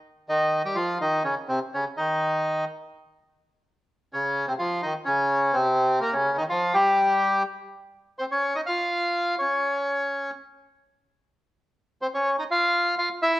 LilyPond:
\new Staff \with { instrumentName = "Bandoneon" } { \time 4/4 \key ees \mixolydian \tempo 4 = 125 r8 <ees ees'>8. <g g'>16 <f f'>8 <ees ees'>8 <des des'>8 <c c'>8 <des des'>8 | <ees ees'>4. r2 r8 | r8 <des des'>8. <c c'>16 <f f'>8 <ees ees'>8 <des des'>4 <c c'>8~ | <c c'>8 <bes bes'>16 <des des'>8 <ees ees'>16 <f f'>8 <g g'>4. r8 |
\key c \phrygian r4 <c' c''>16 <des' des''>8 <ees' ees''>16 <f' f''>4. <des' des''>8~ | <des' des''>4. r2 r8 | r4 <c' c''>16 <des' des''>8 <ees' ees''>16 <f' f''>4 <f' f''>8 <e' e''>8 | }